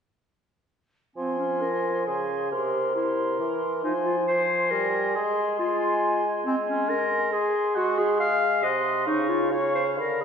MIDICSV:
0, 0, Header, 1, 5, 480
1, 0, Start_track
1, 0, Tempo, 453515
1, 1228, Time_signature, 3, 2, 24, 8
1, 2659, Tempo, 440529
1, 6019, Tempo, 433839
1, 9859, Tempo, 455235
1, 11100, End_track
2, 0, Start_track
2, 0, Title_t, "Flute"
2, 0, Program_c, 0, 73
2, 1233, Note_on_c, 0, 84, 42
2, 2149, Note_off_c, 0, 84, 0
2, 2193, Note_on_c, 0, 84, 37
2, 2652, Note_off_c, 0, 84, 0
2, 2667, Note_on_c, 0, 84, 42
2, 3133, Note_off_c, 0, 84, 0
2, 3138, Note_on_c, 0, 84, 39
2, 4082, Note_off_c, 0, 84, 0
2, 4098, Note_on_c, 0, 84, 36
2, 4571, Note_off_c, 0, 84, 0
2, 4580, Note_on_c, 0, 84, 42
2, 5519, Note_off_c, 0, 84, 0
2, 5531, Note_on_c, 0, 84, 48
2, 6006, Note_off_c, 0, 84, 0
2, 6013, Note_on_c, 0, 84, 47
2, 6955, Note_off_c, 0, 84, 0
2, 6976, Note_on_c, 0, 84, 48
2, 7913, Note_off_c, 0, 84, 0
2, 7939, Note_on_c, 0, 84, 50
2, 8406, Note_off_c, 0, 84, 0
2, 8422, Note_on_c, 0, 84, 50
2, 9066, Note_off_c, 0, 84, 0
2, 9386, Note_on_c, 0, 84, 45
2, 9860, Note_on_c, 0, 85, 47
2, 9876, Note_off_c, 0, 84, 0
2, 10320, Note_off_c, 0, 85, 0
2, 10326, Note_on_c, 0, 85, 48
2, 10819, Note_on_c, 0, 83, 41
2, 10835, Note_off_c, 0, 85, 0
2, 11100, Note_off_c, 0, 83, 0
2, 11100, End_track
3, 0, Start_track
3, 0, Title_t, "Cor anglais"
3, 0, Program_c, 1, 69
3, 1232, Note_on_c, 1, 80, 34
3, 2149, Note_off_c, 1, 80, 0
3, 2191, Note_on_c, 1, 80, 37
3, 2651, Note_off_c, 1, 80, 0
3, 2666, Note_on_c, 1, 70, 38
3, 3132, Note_off_c, 1, 70, 0
3, 3140, Note_on_c, 1, 70, 41
3, 4083, Note_off_c, 1, 70, 0
3, 4104, Note_on_c, 1, 80, 36
3, 4575, Note_off_c, 1, 80, 0
3, 4580, Note_on_c, 1, 80, 47
3, 5519, Note_off_c, 1, 80, 0
3, 5534, Note_on_c, 1, 80, 36
3, 6000, Note_off_c, 1, 80, 0
3, 6006, Note_on_c, 1, 80, 52
3, 6951, Note_off_c, 1, 80, 0
3, 6979, Note_on_c, 1, 80, 47
3, 7738, Note_off_c, 1, 80, 0
3, 7926, Note_on_c, 1, 80, 52
3, 8399, Note_on_c, 1, 78, 49
3, 8416, Note_off_c, 1, 80, 0
3, 9067, Note_off_c, 1, 78, 0
3, 9377, Note_on_c, 1, 78, 50
3, 9857, Note_on_c, 1, 77, 49
3, 9872, Note_off_c, 1, 78, 0
3, 10323, Note_off_c, 1, 77, 0
3, 10330, Note_on_c, 1, 77, 47
3, 10801, Note_off_c, 1, 77, 0
3, 10811, Note_on_c, 1, 77, 41
3, 11100, Note_off_c, 1, 77, 0
3, 11100, End_track
4, 0, Start_track
4, 0, Title_t, "Clarinet"
4, 0, Program_c, 2, 71
4, 1224, Note_on_c, 2, 60, 46
4, 1450, Note_off_c, 2, 60, 0
4, 1465, Note_on_c, 2, 61, 52
4, 1712, Note_on_c, 2, 70, 61
4, 1728, Note_off_c, 2, 61, 0
4, 2188, Note_on_c, 2, 68, 50
4, 2204, Note_off_c, 2, 70, 0
4, 2658, Note_on_c, 2, 67, 52
4, 2674, Note_off_c, 2, 68, 0
4, 3126, Note_off_c, 2, 67, 0
4, 3132, Note_on_c, 2, 64, 51
4, 3842, Note_off_c, 2, 64, 0
4, 4091, Note_on_c, 2, 63, 53
4, 4202, Note_off_c, 2, 63, 0
4, 4336, Note_on_c, 2, 65, 44
4, 4446, Note_off_c, 2, 65, 0
4, 4577, Note_on_c, 2, 72, 68
4, 5047, Note_on_c, 2, 70, 60
4, 5064, Note_off_c, 2, 72, 0
4, 5538, Note_on_c, 2, 68, 59
4, 5554, Note_off_c, 2, 70, 0
4, 6009, Note_off_c, 2, 68, 0
4, 6016, Note_on_c, 2, 65, 60
4, 6722, Note_off_c, 2, 65, 0
4, 6968, Note_on_c, 2, 60, 68
4, 7077, Note_off_c, 2, 60, 0
4, 7214, Note_on_c, 2, 61, 63
4, 7455, Note_on_c, 2, 70, 73
4, 7472, Note_off_c, 2, 61, 0
4, 7932, Note_on_c, 2, 68, 62
4, 7949, Note_off_c, 2, 70, 0
4, 8414, Note_on_c, 2, 66, 70
4, 8431, Note_off_c, 2, 68, 0
4, 8656, Note_on_c, 2, 68, 65
4, 8672, Note_off_c, 2, 66, 0
4, 8889, Note_off_c, 2, 68, 0
4, 8896, Note_on_c, 2, 77, 81
4, 9378, Note_on_c, 2, 75, 65
4, 9394, Note_off_c, 2, 77, 0
4, 9848, Note_off_c, 2, 75, 0
4, 9855, Note_on_c, 2, 63, 67
4, 10092, Note_on_c, 2, 65, 57
4, 10108, Note_off_c, 2, 63, 0
4, 10335, Note_on_c, 2, 73, 67
4, 10351, Note_off_c, 2, 65, 0
4, 10570, Note_off_c, 2, 73, 0
4, 10576, Note_on_c, 2, 72, 59
4, 10683, Note_off_c, 2, 72, 0
4, 10818, Note_on_c, 2, 70, 55
4, 11059, Note_on_c, 2, 68, 55
4, 11075, Note_off_c, 2, 70, 0
4, 11100, Note_off_c, 2, 68, 0
4, 11100, End_track
5, 0, Start_track
5, 0, Title_t, "Bassoon"
5, 0, Program_c, 3, 70
5, 1230, Note_on_c, 3, 53, 43
5, 2148, Note_off_c, 3, 53, 0
5, 2191, Note_on_c, 3, 49, 37
5, 2648, Note_off_c, 3, 49, 0
5, 2654, Note_on_c, 3, 48, 41
5, 3596, Note_off_c, 3, 48, 0
5, 3619, Note_on_c, 3, 52, 41
5, 4104, Note_on_c, 3, 53, 48
5, 4121, Note_off_c, 3, 52, 0
5, 5051, Note_off_c, 3, 53, 0
5, 5058, Note_on_c, 3, 55, 46
5, 5547, Note_on_c, 3, 56, 57
5, 5563, Note_off_c, 3, 55, 0
5, 6968, Note_off_c, 3, 56, 0
5, 6975, Note_on_c, 3, 56, 55
5, 8088, Note_off_c, 3, 56, 0
5, 8417, Note_on_c, 3, 56, 60
5, 9379, Note_on_c, 3, 48, 51
5, 9396, Note_off_c, 3, 56, 0
5, 9867, Note_on_c, 3, 49, 56
5, 9883, Note_off_c, 3, 48, 0
5, 10810, Note_on_c, 3, 50, 47
5, 10825, Note_off_c, 3, 49, 0
5, 11100, Note_off_c, 3, 50, 0
5, 11100, End_track
0, 0, End_of_file